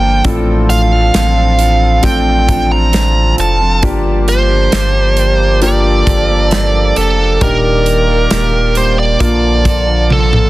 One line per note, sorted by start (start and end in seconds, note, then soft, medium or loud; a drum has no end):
0.00 0.22 G1 medium
0.00 3.79 F3 medium
0.00 0.16 A#3 medium
0.00 0.21 A#3 medium
0.00 0.16 D4 medium
0.00 0.25 D4 medium
0.00 0.16 F4 medium
0.00 0.21 F4 medium
0.00 0.16 A4 medium
0.00 0.25 A4 medium
0.00 0.22 G5 medium
0.04 0.24 F3 soft
0.04 0.26 A#3 soft
0.24 1.10 A1 loud
0.24 0.92 A2 medium
0.24 1.55 A2 medium
0.24 0.92 D3 medium
0.24 0.92 F3 medium
0.24 1.95 C4 medium
0.24 3.80 C4 medium
0.24 0.92 C4 medium
0.24 1.95 D4 medium
0.24 0.91 D4 medium
0.24 1.95 F4 medium
0.24 3.80 F4 medium
0.24 1.95 A4 medium
0.24 0.90 A4 medium
0.24 kick loud
0.24 closed hi-hat medium
0.70 2.04 F5 medium
0.70 closed hi-hat medium
0.91 1.14 F3 soft
0.91 1.14 C4 soft
0.91 1.15 D4 soft
0.91 1.14 A4 soft
1.14 2.00 A1 loud
1.14 1.37 A2 medium
1.14 1.37 D3 medium
1.14 1.37 F3 medium
1.14 1.37 C4 medium
1.14 1.36 D4 medium
1.14 1.34 A4 medium
1.14 snare loud
1.14 closed hi-hat medium
1.36 1.57 F3 soft
1.36 1.59 C4 soft
1.36 1.59 D4 soft
1.36 1.59 A4 medium
1.59 2.02 F3 medium
1.59 2.03 C4 medium
1.59 2.04 D4 medium
1.59 2.05 A4 medium
1.59 closed hi-hat medium
2.03 3.34 A1 loud
2.03 2.46 F3 soft
2.03 3.74 A3 medium
2.03 3.74 C4 medium
2.03 2.47 C4 medium
2.03 3.74 D4 medium
2.03 2.48 D4 medium
2.03 3.74 F4 medium
2.03 2.50 A4 medium
2.03 2.74 G5 medium
2.03 kick medium
2.03 closed hi-hat medium
2.47 2.70 F3 medium
2.47 2.71 C4 medium
2.47 2.70 D4 medium
2.47 2.69 A4 medium
2.47 kick medium
2.47 closed hi-hat medium
2.70 2.92 F3 soft
2.70 2.93 C4 soft
2.70 2.93 D4 soft
2.70 2.93 A4 soft
2.70 3.35 A#5 medium
2.92 3.38 A2 medium
2.92 3.38 D3 medium
2.92 3.36 F3 medium
2.92 3.37 C4 medium
2.92 3.38 D4 medium
2.92 snare loud
2.92 closed hi-hat medium
3.37 3.85 F1 medium
3.37 3.60 F3 medium
3.37 3.60 C4 medium
3.37 3.60 D4 medium
3.37 3.58 A4 medium
3.37 3.81 A5 medium
3.37 closed hi-hat medium
3.59 3.82 F3 soft
3.59 3.83 C4 soft
3.59 3.83 D4 soft
3.59 3.82 A4 medium
3.82 4.69 G1 loud
3.82 4.50 G2 medium
3.82 4.50 D3 medium
3.82 4.50 F3 medium
3.82 7.38 F3 medium
3.82 5.53 A#3 medium
3.82 10.50 A#3 medium
3.82 4.50 A#3 medium
3.82 5.53 D4 medium
3.82 4.49 D4 medium
3.82 5.53 F4 medium
3.82 5.60 G4 medium
3.82 5.54 G4 medium
3.82 4.48 G4 medium
3.82 9.16 D5 medium
3.82 kick loud
3.82 closed hi-hat medium
4.28 5.59 C5 loud
4.28 closed hi-hat medium
4.49 4.72 F3 soft
4.49 4.72 A#3 soft
4.49 4.72 D4 soft
4.49 4.72 G4 medium
4.72 6.03 G1 loud
4.72 4.95 G2 medium
4.72 4.95 D3 medium
4.72 4.95 F3 medium
4.72 4.95 A#3 medium
4.72 4.94 D4 medium
4.72 4.92 G4 medium
4.72 snare loud
4.72 closed hi-hat medium
4.94 5.15 F3 soft
4.94 5.16 A#3 soft
4.94 5.17 D4 soft
4.94 5.17 G4 medium
5.16 5.59 F3 medium
5.16 5.61 A#3 medium
5.16 5.62 D4 medium
5.16 5.63 G4 medium
5.16 closed hi-hat medium
5.61 6.04 F3 medium
5.61 6.06 A#3 medium
5.61 7.32 A#3 medium
5.61 7.32 D4 medium
5.61 6.07 D4 medium
5.61 7.32 F4 medium
5.61 7.33 G4 medium
5.61 6.08 G4 medium
5.61 7.40 A4 medium
5.61 7.01 D5 loud
5.61 closed hi-hat medium
6.06 6.93 G1 medium
6.06 6.29 F3 medium
6.06 6.29 A#3 medium
6.06 6.28 D4 medium
6.06 6.27 G4 medium
6.06 kick medium
6.06 closed hi-hat medium
6.28 6.51 F3 soft
6.28 6.51 A#3 soft
6.28 6.52 D4 soft
6.28 6.51 G4 soft
6.51 6.96 G2 medium
6.51 6.96 D3 medium
6.51 6.94 F3 medium
6.51 6.96 A#3 medium
6.51 6.97 D4 medium
6.51 6.97 G4 medium
6.51 snare loud
6.51 closed hi-hat medium
6.95 7.38 F1 medium
6.95 7.18 F3 medium
6.95 7.19 A#3 medium
6.95 7.18 D4 medium
6.95 7.17 G4 medium
6.95 7.42 A4 medium
6.95 closed hi-hat medium
7.18 7.41 F3 soft
7.18 7.41 A#3 soft
7.18 7.41 D4 soft
7.18 7.41 G4 soft
7.41 8.27 D#1 loud
7.41 8.72 A#2 medium
7.41 8.08 D#3 medium
7.41 9.19 D#3 medium
7.41 8.09 G3 medium
7.41 9.12 A#3 medium
7.41 8.09 A#3 medium
7.41 9.12 D4 medium
7.41 8.08 D4 medium
7.41 9.12 D#4 medium
7.41 9.19 G4 medium
7.41 9.12 G4 medium
7.41 8.07 G4 medium
7.41 8.80 A#4 medium
7.41 kick loud
7.41 closed hi-hat medium
7.86 closed hi-hat medium
8.08 8.30 A#3 soft
8.08 8.31 D4 soft
8.08 8.31 G4 medium
8.30 9.17 D#1 loud
8.30 8.53 D#3 medium
8.30 8.53 G3 medium
8.30 8.54 A#3 medium
8.30 8.53 D4 medium
8.30 8.51 G4 medium
8.30 snare loud
8.30 closed hi-hat medium
8.53 8.75 A#3 soft
8.53 8.76 D4 soft
8.53 8.75 G4 soft
8.75 9.19 G3 medium
8.75 9.20 A#3 medium
8.75 9.21 D4 medium
8.75 9.22 G4 medium
8.75 8.97 C5 medium
8.75 closed hi-hat medium
8.99 10.29 D5 medium
9.19 10.50 A#1 medium
9.19 10.50 D3 medium
9.19 10.50 F3 medium
9.19 9.63 F3 medium
9.19 10.50 A#3 medium
9.19 9.65 A#3 medium
9.19 10.50 D4 medium
9.19 9.65 D4 medium
9.19 10.50 F4 medium
9.19 kick medium
9.19 closed hi-hat medium
9.23 9.67 A4 medium
9.64 9.87 F3 medium
9.64 9.88 A#3 medium
9.64 9.87 D4 medium
9.64 9.86 A4 medium
9.64 kick loud
9.64 closed hi-hat medium
9.87 10.09 F3 soft
9.87 10.10 A#3 soft
9.87 10.10 D4 soft
9.87 10.10 A4 medium
10.09 10.50 A#2 medium
10.09 10.50 D3 medium
10.09 10.50 F3 medium
10.09 10.50 A#3 medium
10.09 10.50 D4 medium
10.09 10.50 A4 loud
10.09 10.50 A4 medium
10.09 high tom medium
10.33 mid tom medium